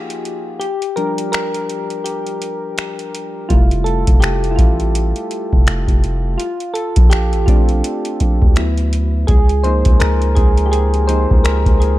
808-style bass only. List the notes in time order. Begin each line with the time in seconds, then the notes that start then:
3.51 F1
4.08 F1
4.23 F1
4.59 A1
5.53 F1
5.88 F1
6.97 A#1
7.33 A1
7.48 A#1
8.21 A#1
8.42 D2
9.29 C#2
9.86 C#2
10.01 C#2
10.37 C#2
11.31 C#2
11.66 C#2